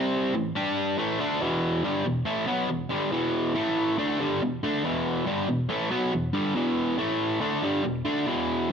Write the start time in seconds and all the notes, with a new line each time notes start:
Already playing: C3 G3 C4
0.34 A2 E3
0.55 G3 D4 G4
0.98 A2 E3 A3
1.20 D3 A3 D4
1.41 E2 B2 E3
1.84 G2 D3 G3
2.05 E2 B2
2.25 A2 E3 A3
2.47 B2 F#3 B3
2.69 E2 B2
2.89 G2 D3 G3
3.11 E2 B2 E3
3.55 A2 E3 A3
3.98 D3 A3 D4
4.19 G2 D3 G3
4.42 E2 B2
4.63 D3 A3 D4
4.84 E2 B2 E3
5.26 G2 D3 G3
5.48 E2 B2
5.69 A2 E3 A3
5.91 B2 F#3 B3
6.12 E2 B2
6.33 G2 D3 G3
6.55 E2 B2 E3
6.98 A2 E3 A3
7.41 D3 A3 D4
7.63 G2 D3 G3
7.84 E2 B2
8.05 D3 A3 D4
8.27 E2 B2 E3